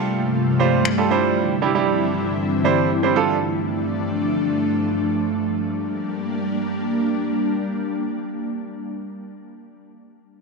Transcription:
0, 0, Header, 1, 4, 480
1, 0, Start_track
1, 0, Tempo, 500000
1, 9998, End_track
2, 0, Start_track
2, 0, Title_t, "Grand piano"
2, 0, Program_c, 0, 0
2, 0, Note_on_c, 0, 55, 82
2, 0, Note_on_c, 0, 65, 77
2, 0, Note_on_c, 0, 67, 74
2, 0, Note_on_c, 0, 69, 96
2, 248, Note_off_c, 0, 55, 0
2, 249, Note_off_c, 0, 65, 0
2, 250, Note_off_c, 0, 67, 0
2, 251, Note_off_c, 0, 69, 0
2, 570, Note_on_c, 0, 55, 83
2, 571, Note_on_c, 0, 65, 78
2, 573, Note_on_c, 0, 67, 77
2, 576, Note_on_c, 0, 72, 91
2, 802, Note_off_c, 0, 55, 0
2, 803, Note_off_c, 0, 65, 0
2, 804, Note_off_c, 0, 67, 0
2, 805, Note_off_c, 0, 72, 0
2, 939, Note_on_c, 0, 55, 78
2, 939, Note_on_c, 0, 65, 69
2, 941, Note_on_c, 0, 67, 72
2, 943, Note_on_c, 0, 69, 90
2, 1047, Note_off_c, 0, 55, 0
2, 1061, Note_on_c, 0, 55, 84
2, 1063, Note_off_c, 0, 65, 0
2, 1063, Note_on_c, 0, 62, 80
2, 1064, Note_off_c, 0, 67, 0
2, 1064, Note_off_c, 0, 69, 0
2, 1065, Note_on_c, 0, 64, 80
2, 1067, Note_on_c, 0, 72, 97
2, 1456, Note_off_c, 0, 55, 0
2, 1457, Note_off_c, 0, 62, 0
2, 1458, Note_off_c, 0, 64, 0
2, 1459, Note_off_c, 0, 72, 0
2, 1552, Note_on_c, 0, 55, 80
2, 1553, Note_on_c, 0, 62, 77
2, 1555, Note_on_c, 0, 64, 77
2, 1558, Note_on_c, 0, 67, 92
2, 1631, Note_off_c, 0, 55, 0
2, 1632, Note_off_c, 0, 62, 0
2, 1633, Note_off_c, 0, 64, 0
2, 1634, Note_off_c, 0, 67, 0
2, 1677, Note_on_c, 0, 55, 82
2, 1678, Note_on_c, 0, 62, 75
2, 1679, Note_on_c, 0, 64, 72
2, 1682, Note_on_c, 0, 67, 91
2, 2218, Note_off_c, 0, 55, 0
2, 2219, Note_off_c, 0, 62, 0
2, 2219, Note_off_c, 0, 64, 0
2, 2220, Note_off_c, 0, 67, 0
2, 2538, Note_on_c, 0, 55, 81
2, 2540, Note_on_c, 0, 62, 75
2, 2542, Note_on_c, 0, 64, 77
2, 2544, Note_on_c, 0, 72, 93
2, 2771, Note_off_c, 0, 55, 0
2, 2772, Note_off_c, 0, 62, 0
2, 2773, Note_off_c, 0, 64, 0
2, 2774, Note_off_c, 0, 72, 0
2, 2907, Note_on_c, 0, 55, 78
2, 2908, Note_on_c, 0, 62, 72
2, 2909, Note_on_c, 0, 64, 73
2, 2911, Note_on_c, 0, 72, 83
2, 3016, Note_off_c, 0, 55, 0
2, 3018, Note_off_c, 0, 62, 0
2, 3031, Note_on_c, 0, 55, 85
2, 3032, Note_off_c, 0, 64, 0
2, 3032, Note_on_c, 0, 62, 80
2, 3033, Note_off_c, 0, 72, 0
2, 3034, Note_on_c, 0, 65, 78
2, 3035, Note_on_c, 0, 69, 96
2, 3229, Note_off_c, 0, 55, 0
2, 3229, Note_off_c, 0, 62, 0
2, 3230, Note_off_c, 0, 65, 0
2, 3231, Note_off_c, 0, 69, 0
2, 9998, End_track
3, 0, Start_track
3, 0, Title_t, "Ambient pad"
3, 0, Program_c, 1, 92
3, 0, Note_on_c, 1, 43, 82
3, 0, Note_on_c, 1, 48, 73
3, 0, Note_on_c, 1, 53, 75
3, 0, Note_on_c, 1, 55, 77
3, 0, Note_on_c, 1, 57, 73
3, 0, Note_on_c, 1, 65, 86
3, 1046, Note_off_c, 1, 53, 0
3, 1046, Note_off_c, 1, 65, 0
3, 1047, Note_off_c, 1, 48, 0
3, 1047, Note_off_c, 1, 57, 0
3, 1061, Note_on_c, 1, 60, 77
3, 1062, Note_on_c, 1, 50, 76
3, 1062, Note_on_c, 1, 52, 75
3, 1062, Note_on_c, 1, 64, 91
3, 2993, Note_off_c, 1, 55, 0
3, 3012, Note_off_c, 1, 50, 0
3, 3012, Note_off_c, 1, 52, 0
3, 3012, Note_off_c, 1, 60, 0
3, 3012, Note_off_c, 1, 64, 0
3, 3033, Note_on_c, 1, 62, 87
3, 3034, Note_on_c, 1, 53, 74
3, 3034, Note_on_c, 1, 57, 74
3, 5210, Note_off_c, 1, 43, 0
3, 5226, Note_off_c, 1, 53, 0
3, 5226, Note_off_c, 1, 62, 0
3, 5227, Note_off_c, 1, 57, 0
3, 5249, Note_on_c, 1, 62, 81
3, 5250, Note_on_c, 1, 58, 72
3, 5251, Note_on_c, 1, 55, 78
3, 9047, Note_off_c, 1, 62, 0
3, 9048, Note_off_c, 1, 58, 0
3, 9049, Note_off_c, 1, 55, 0
3, 9998, End_track
4, 0, Start_track
4, 0, Title_t, "Drums"
4, 818, Note_on_c, 9, 26, 100
4, 914, Note_off_c, 9, 26, 0
4, 9998, End_track
0, 0, End_of_file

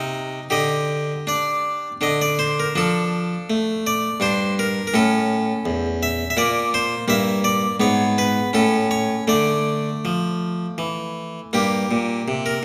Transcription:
0, 0, Header, 1, 2, 480
1, 0, Start_track
1, 0, Key_signature, -1, "minor"
1, 0, Tempo, 738007
1, 337, Time_signature, 3, 2, 24, 8
1, 2740, Tempo, 714286
1, 5140, Tempo, 748130
1, 8260, End_track
2, 0, Start_track
2, 0, Title_t, "Harpsichord"
2, 0, Program_c, 0, 6
2, 0, Note_on_c, 0, 48, 62
2, 0, Note_on_c, 0, 63, 40
2, 0, Note_on_c, 0, 75, 83
2, 245, Note_off_c, 0, 48, 0
2, 276, Note_off_c, 0, 75, 0
2, 313, Note_off_c, 0, 63, 0
2, 327, Note_on_c, 0, 67, 42
2, 331, Note_on_c, 0, 50, 62
2, 338, Note_on_c, 0, 75, 85
2, 723, Note_off_c, 0, 50, 0
2, 824, Note_off_c, 0, 75, 0
2, 827, Note_on_c, 0, 62, 46
2, 836, Note_on_c, 0, 74, 62
2, 1216, Note_off_c, 0, 62, 0
2, 1245, Note_off_c, 0, 74, 0
2, 1280, Note_off_c, 0, 67, 0
2, 1307, Note_on_c, 0, 62, 33
2, 1311, Note_on_c, 0, 50, 45
2, 1319, Note_on_c, 0, 75, 78
2, 1436, Note_off_c, 0, 75, 0
2, 1441, Note_on_c, 0, 74, 68
2, 1553, Note_on_c, 0, 72, 83
2, 1557, Note_off_c, 0, 74, 0
2, 1673, Note_off_c, 0, 72, 0
2, 1688, Note_on_c, 0, 70, 59
2, 1696, Note_off_c, 0, 50, 0
2, 1763, Note_off_c, 0, 62, 0
2, 1792, Note_on_c, 0, 53, 55
2, 1792, Note_on_c, 0, 62, 42
2, 1799, Note_off_c, 0, 70, 0
2, 1806, Note_on_c, 0, 69, 79
2, 2171, Note_off_c, 0, 53, 0
2, 2274, Note_on_c, 0, 57, 47
2, 2404, Note_off_c, 0, 69, 0
2, 2514, Note_on_c, 0, 74, 90
2, 2651, Note_off_c, 0, 57, 0
2, 2711, Note_off_c, 0, 74, 0
2, 2715, Note_off_c, 0, 62, 0
2, 2732, Note_on_c, 0, 43, 56
2, 2737, Note_on_c, 0, 62, 40
2, 2745, Note_on_c, 0, 72, 80
2, 2950, Note_off_c, 0, 72, 0
2, 2995, Note_on_c, 0, 70, 96
2, 3123, Note_off_c, 0, 43, 0
2, 3175, Note_off_c, 0, 70, 0
2, 3183, Note_on_c, 0, 70, 61
2, 3197, Note_off_c, 0, 62, 0
2, 3227, Note_on_c, 0, 61, 44
2, 3228, Note_off_c, 0, 70, 0
2, 3228, Note_on_c, 0, 45, 67
2, 3237, Note_on_c, 0, 69, 88
2, 3612, Note_off_c, 0, 45, 0
2, 3709, Note_on_c, 0, 40, 61
2, 3845, Note_off_c, 0, 69, 0
2, 3959, Note_on_c, 0, 76, 105
2, 4090, Note_off_c, 0, 40, 0
2, 4117, Note_off_c, 0, 76, 0
2, 4145, Note_on_c, 0, 76, 85
2, 4158, Note_off_c, 0, 61, 0
2, 4187, Note_off_c, 0, 76, 0
2, 4188, Note_on_c, 0, 46, 65
2, 4190, Note_on_c, 0, 58, 49
2, 4196, Note_on_c, 0, 74, 97
2, 4394, Note_off_c, 0, 74, 0
2, 4439, Note_on_c, 0, 72, 113
2, 4568, Note_off_c, 0, 46, 0
2, 4635, Note_off_c, 0, 72, 0
2, 4637, Note_off_c, 0, 58, 0
2, 4665, Note_on_c, 0, 58, 51
2, 4666, Note_on_c, 0, 43, 73
2, 4678, Note_on_c, 0, 76, 119
2, 4873, Note_off_c, 0, 76, 0
2, 4911, Note_on_c, 0, 74, 106
2, 5047, Note_off_c, 0, 43, 0
2, 5111, Note_off_c, 0, 74, 0
2, 5115, Note_off_c, 0, 58, 0
2, 5148, Note_on_c, 0, 44, 66
2, 5148, Note_on_c, 0, 59, 45
2, 5158, Note_on_c, 0, 73, 90
2, 5350, Note_off_c, 0, 73, 0
2, 5396, Note_on_c, 0, 71, 98
2, 5524, Note_off_c, 0, 44, 0
2, 5590, Note_off_c, 0, 71, 0
2, 5592, Note_off_c, 0, 59, 0
2, 5621, Note_on_c, 0, 61, 46
2, 5628, Note_on_c, 0, 45, 61
2, 5630, Note_on_c, 0, 69, 89
2, 5827, Note_off_c, 0, 69, 0
2, 5862, Note_on_c, 0, 73, 93
2, 6008, Note_off_c, 0, 45, 0
2, 6064, Note_off_c, 0, 73, 0
2, 6074, Note_off_c, 0, 61, 0
2, 6096, Note_on_c, 0, 57, 39
2, 6098, Note_on_c, 0, 50, 51
2, 6106, Note_on_c, 0, 74, 79
2, 6488, Note_off_c, 0, 50, 0
2, 6593, Note_on_c, 0, 53, 45
2, 6979, Note_off_c, 0, 53, 0
2, 7063, Note_on_c, 0, 52, 52
2, 7077, Note_off_c, 0, 74, 0
2, 7451, Note_off_c, 0, 52, 0
2, 7526, Note_off_c, 0, 57, 0
2, 7544, Note_on_c, 0, 58, 31
2, 7546, Note_on_c, 0, 43, 48
2, 7551, Note_on_c, 0, 67, 66
2, 7736, Note_off_c, 0, 43, 0
2, 7785, Note_on_c, 0, 46, 46
2, 7974, Note_off_c, 0, 46, 0
2, 8023, Note_on_c, 0, 48, 45
2, 8052, Note_off_c, 0, 67, 0
2, 8139, Note_on_c, 0, 70, 59
2, 8211, Note_off_c, 0, 48, 0
2, 8258, Note_off_c, 0, 70, 0
2, 8260, Note_off_c, 0, 58, 0
2, 8260, End_track
0, 0, End_of_file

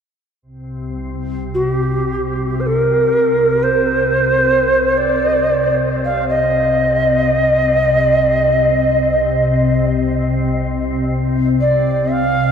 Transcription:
0, 0, Header, 1, 3, 480
1, 0, Start_track
1, 0, Key_signature, -3, "minor"
1, 0, Tempo, 500000
1, 12017, End_track
2, 0, Start_track
2, 0, Title_t, "Native American-style wooden flute"
2, 0, Program_c, 0, 77
2, 1475, Note_on_c, 0, 66, 62
2, 1591, Note_off_c, 0, 66, 0
2, 1591, Note_on_c, 0, 67, 62
2, 2493, Note_on_c, 0, 72, 40
2, 2507, Note_off_c, 0, 67, 0
2, 2551, Note_on_c, 0, 70, 63
2, 2566, Note_off_c, 0, 72, 0
2, 3481, Note_on_c, 0, 72, 68
2, 3495, Note_off_c, 0, 70, 0
2, 4768, Note_on_c, 0, 74, 66
2, 4782, Note_off_c, 0, 72, 0
2, 5537, Note_off_c, 0, 74, 0
2, 5804, Note_on_c, 0, 77, 72
2, 6025, Note_off_c, 0, 77, 0
2, 6031, Note_on_c, 0, 75, 76
2, 9464, Note_off_c, 0, 75, 0
2, 11137, Note_on_c, 0, 74, 68
2, 11628, Note_on_c, 0, 77, 75
2, 11642, Note_off_c, 0, 74, 0
2, 12017, Note_off_c, 0, 77, 0
2, 12017, End_track
3, 0, Start_track
3, 0, Title_t, "Ambient pad"
3, 0, Program_c, 1, 92
3, 405, Note_on_c, 1, 36, 65
3, 410, Note_on_c, 1, 48, 61
3, 12017, Note_off_c, 1, 36, 0
3, 12017, Note_off_c, 1, 48, 0
3, 12017, End_track
0, 0, End_of_file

